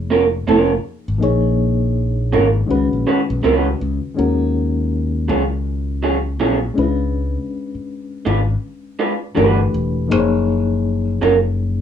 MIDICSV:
0, 0, Header, 1, 5, 480
1, 0, Start_track
1, 0, Key_signature, -6, "minor"
1, 0, Tempo, 740741
1, 777, Time_signature, 4, 2, 24, 8
1, 7655, End_track
2, 0, Start_track
2, 0, Title_t, "Clean electric guitar"
2, 0, Program_c, 0, 27
2, 66, Note_on_c, 0, 58, 55
2, 70, Note_on_c, 0, 61, 53
2, 72, Note_on_c, 0, 65, 68
2, 76, Note_on_c, 0, 70, 73
2, 150, Note_off_c, 0, 58, 0
2, 152, Note_off_c, 0, 61, 0
2, 153, Note_off_c, 0, 65, 0
2, 155, Note_off_c, 0, 70, 0
2, 307, Note_on_c, 0, 58, 84
2, 308, Note_on_c, 0, 61, 88
2, 313, Note_on_c, 0, 65, 81
2, 315, Note_on_c, 0, 70, 81
2, 455, Note_off_c, 0, 58, 0
2, 456, Note_off_c, 0, 61, 0
2, 459, Note_off_c, 0, 65, 0
2, 460, Note_off_c, 0, 70, 0
2, 1506, Note_on_c, 0, 56, 54
2, 1509, Note_on_c, 0, 61, 57
2, 1511, Note_on_c, 0, 65, 58
2, 1517, Note_on_c, 0, 70, 54
2, 1590, Note_off_c, 0, 56, 0
2, 1591, Note_off_c, 0, 61, 0
2, 1592, Note_off_c, 0, 65, 0
2, 1595, Note_off_c, 0, 70, 0
2, 1988, Note_on_c, 0, 56, 51
2, 1990, Note_on_c, 0, 61, 53
2, 1994, Note_on_c, 0, 66, 55
2, 1997, Note_on_c, 0, 71, 61
2, 2071, Note_off_c, 0, 56, 0
2, 2072, Note_off_c, 0, 61, 0
2, 2074, Note_off_c, 0, 66, 0
2, 2075, Note_off_c, 0, 71, 0
2, 2223, Note_on_c, 0, 56, 71
2, 2226, Note_on_c, 0, 61, 81
2, 2230, Note_on_c, 0, 66, 72
2, 2231, Note_on_c, 0, 71, 83
2, 2374, Note_off_c, 0, 56, 0
2, 2375, Note_off_c, 0, 61, 0
2, 2377, Note_off_c, 0, 66, 0
2, 2378, Note_off_c, 0, 71, 0
2, 3424, Note_on_c, 0, 54, 55
2, 3429, Note_on_c, 0, 61, 60
2, 3435, Note_on_c, 0, 65, 59
2, 3435, Note_on_c, 0, 68, 66
2, 3509, Note_off_c, 0, 54, 0
2, 3511, Note_off_c, 0, 61, 0
2, 3514, Note_off_c, 0, 65, 0
2, 3514, Note_off_c, 0, 68, 0
2, 3905, Note_on_c, 0, 54, 50
2, 3910, Note_on_c, 0, 61, 56
2, 3912, Note_on_c, 0, 65, 57
2, 3914, Note_on_c, 0, 68, 61
2, 3989, Note_off_c, 0, 54, 0
2, 3992, Note_off_c, 0, 61, 0
2, 3993, Note_off_c, 0, 65, 0
2, 3994, Note_off_c, 0, 68, 0
2, 4146, Note_on_c, 0, 54, 80
2, 4150, Note_on_c, 0, 61, 77
2, 4152, Note_on_c, 0, 65, 79
2, 4155, Note_on_c, 0, 68, 81
2, 4254, Note_off_c, 0, 54, 0
2, 4256, Note_off_c, 0, 61, 0
2, 4257, Note_off_c, 0, 65, 0
2, 4259, Note_off_c, 0, 68, 0
2, 5348, Note_on_c, 0, 56, 57
2, 5352, Note_on_c, 0, 62, 57
2, 5355, Note_on_c, 0, 65, 59
2, 5359, Note_on_c, 0, 71, 55
2, 5431, Note_off_c, 0, 56, 0
2, 5433, Note_off_c, 0, 62, 0
2, 5434, Note_off_c, 0, 65, 0
2, 5436, Note_off_c, 0, 71, 0
2, 5826, Note_on_c, 0, 56, 61
2, 5828, Note_on_c, 0, 62, 63
2, 5832, Note_on_c, 0, 65, 65
2, 5835, Note_on_c, 0, 71, 65
2, 5910, Note_off_c, 0, 56, 0
2, 5911, Note_off_c, 0, 62, 0
2, 5913, Note_off_c, 0, 65, 0
2, 5914, Note_off_c, 0, 71, 0
2, 6060, Note_on_c, 0, 55, 78
2, 6066, Note_on_c, 0, 62, 75
2, 6068, Note_on_c, 0, 66, 81
2, 6073, Note_on_c, 0, 71, 84
2, 6212, Note_off_c, 0, 55, 0
2, 6215, Note_off_c, 0, 62, 0
2, 6216, Note_off_c, 0, 66, 0
2, 6218, Note_off_c, 0, 71, 0
2, 7267, Note_on_c, 0, 54, 53
2, 7269, Note_on_c, 0, 61, 54
2, 7271, Note_on_c, 0, 65, 55
2, 7275, Note_on_c, 0, 70, 64
2, 7350, Note_off_c, 0, 54, 0
2, 7351, Note_off_c, 0, 61, 0
2, 7352, Note_off_c, 0, 65, 0
2, 7354, Note_off_c, 0, 70, 0
2, 7655, End_track
3, 0, Start_track
3, 0, Title_t, "Reed electric piano"
3, 0, Program_c, 1, 4
3, 0, Control_c, 1, 64, 127
3, 0, Note_on_c, 1, 53, 69
3, 0, Note_on_c, 1, 58, 62
3, 0, Note_on_c, 1, 63, 64
3, 0, Note_on_c, 1, 68, 65
3, 0, Note_on_c, 1, 73, 80
3, 746, Note_off_c, 1, 53, 0
3, 751, Note_off_c, 1, 58, 0
3, 754, Note_off_c, 1, 63, 0
3, 758, Note_off_c, 1, 68, 0
3, 766, Note_on_c, 1, 53, 75
3, 775, Note_on_c, 1, 58, 61
3, 783, Note_off_c, 1, 73, 0
3, 783, Note_on_c, 1, 63, 61
3, 784, Control_c, 1, 64, 0
3, 792, Note_on_c, 1, 68, 58
3, 800, Note_on_c, 1, 73, 76
3, 881, Control_c, 1, 64, 127
3, 1713, Note_off_c, 1, 53, 0
3, 1717, Note_off_c, 1, 58, 0
3, 1721, Note_off_c, 1, 63, 0
3, 1726, Note_off_c, 1, 68, 0
3, 1727, Note_on_c, 1, 51, 74
3, 1730, Note_off_c, 1, 73, 0
3, 1733, Note_on_c, 1, 56, 65
3, 1743, Note_on_c, 1, 61, 65
3, 1745, Control_c, 1, 64, 0
3, 1748, Note_on_c, 1, 66, 59
3, 1757, Note_on_c, 1, 71, 76
3, 1862, Control_c, 1, 64, 127
3, 2673, Note_off_c, 1, 51, 0
3, 2676, Note_off_c, 1, 56, 0
3, 2681, Note_off_c, 1, 61, 0
3, 2683, Note_off_c, 1, 66, 0
3, 2684, Note_on_c, 1, 51, 66
3, 2688, Note_off_c, 1, 71, 0
3, 2693, Note_on_c, 1, 56, 59
3, 2702, Note_on_c, 1, 61, 66
3, 2705, Control_c, 1, 64, 0
3, 2708, Note_on_c, 1, 66, 57
3, 2717, Note_on_c, 1, 70, 66
3, 2815, Control_c, 1, 64, 127
3, 4345, Note_off_c, 1, 51, 0
3, 4349, Note_off_c, 1, 56, 0
3, 4354, Note_off_c, 1, 61, 0
3, 4357, Note_off_c, 1, 66, 0
3, 4361, Note_off_c, 1, 70, 0
3, 4367, Note_on_c, 1, 56, 66
3, 4376, Note_on_c, 1, 61, 64
3, 4384, Note_on_c, 1, 62, 62
3, 4385, Control_c, 1, 64, 0
3, 4393, Note_on_c, 1, 64, 46
3, 4401, Note_on_c, 1, 71, 75
3, 4434, Note_on_c, 1, 65, 59
3, 4436, Note_off_c, 1, 64, 0
3, 4512, Control_c, 1, 64, 127
3, 6026, Note_off_c, 1, 56, 0
3, 6031, Note_off_c, 1, 61, 0
3, 6035, Note_off_c, 1, 62, 0
3, 6043, Note_off_c, 1, 71, 0
3, 6057, Note_on_c, 1, 52, 75
3, 6060, Note_off_c, 1, 65, 0
3, 6061, Note_on_c, 1, 57, 66
3, 6065, Note_on_c, 1, 62, 68
3, 6066, Control_c, 1, 64, 0
3, 6070, Note_on_c, 1, 67, 70
3, 6074, Note_on_c, 1, 70, 66
3, 6115, Note_on_c, 1, 71, 84
3, 6117, Note_off_c, 1, 70, 0
3, 6164, Control_c, 1, 64, 127
3, 6529, Note_on_c, 1, 53, 70
3, 6537, Note_off_c, 1, 52, 0
3, 6537, Note_on_c, 1, 58, 70
3, 6539, Note_off_c, 1, 57, 0
3, 6541, Note_off_c, 1, 62, 0
3, 6544, Note_off_c, 1, 67, 0
3, 6545, Control_c, 1, 64, 0
3, 6545, Note_on_c, 1, 63, 65
3, 6553, Note_on_c, 1, 68, 61
3, 6563, Note_on_c, 1, 72, 56
3, 6566, Note_off_c, 1, 71, 0
3, 6601, Note_off_c, 1, 72, 0
3, 6603, Note_on_c, 1, 73, 74
3, 6680, Control_c, 1, 64, 127
3, 7655, Note_off_c, 1, 53, 0
3, 7655, Note_off_c, 1, 58, 0
3, 7655, Note_off_c, 1, 63, 0
3, 7655, Note_off_c, 1, 68, 0
3, 7655, Note_off_c, 1, 73, 0
3, 7655, End_track
4, 0, Start_track
4, 0, Title_t, "Fingered electric bass"
4, 0, Program_c, 2, 33
4, 0, Note_on_c, 2, 29, 83
4, 279, Note_off_c, 2, 29, 0
4, 313, Note_on_c, 2, 29, 84
4, 498, Note_off_c, 2, 29, 0
4, 700, Note_on_c, 2, 32, 88
4, 769, Note_off_c, 2, 32, 0
4, 793, Note_on_c, 2, 34, 102
4, 1513, Note_on_c, 2, 32, 79
4, 1523, Note_off_c, 2, 34, 0
4, 1699, Note_off_c, 2, 32, 0
4, 1753, Note_on_c, 2, 37, 88
4, 1863, Note_off_c, 2, 37, 0
4, 1899, Note_on_c, 2, 34, 73
4, 1968, Note_off_c, 2, 34, 0
4, 2139, Note_on_c, 2, 35, 77
4, 2208, Note_off_c, 2, 35, 0
4, 2231, Note_on_c, 2, 37, 83
4, 2417, Note_off_c, 2, 37, 0
4, 2471, Note_on_c, 2, 37, 81
4, 2582, Note_off_c, 2, 37, 0
4, 2712, Note_on_c, 2, 39, 91
4, 3430, Note_on_c, 2, 37, 85
4, 3440, Note_off_c, 2, 39, 0
4, 4152, Note_off_c, 2, 37, 0
4, 4152, Note_on_c, 2, 34, 89
4, 4338, Note_off_c, 2, 34, 0
4, 4392, Note_on_c, 2, 37, 88
4, 4770, Note_off_c, 2, 37, 0
4, 5356, Note_on_c, 2, 32, 87
4, 5540, Note_off_c, 2, 32, 0
4, 6073, Note_on_c, 2, 31, 91
4, 6258, Note_off_c, 2, 31, 0
4, 6313, Note_on_c, 2, 28, 88
4, 6554, Note_off_c, 2, 28, 0
4, 6554, Note_on_c, 2, 30, 106
4, 7240, Note_off_c, 2, 30, 0
4, 7274, Note_on_c, 2, 30, 86
4, 7655, Note_off_c, 2, 30, 0
4, 7655, End_track
5, 0, Start_track
5, 0, Title_t, "Muted fingered electric bass strokes"
5, 5020, Note_on_c, 9, 29, 45
5, 5085, Note_off_c, 9, 29, 0
5, 7655, End_track
0, 0, End_of_file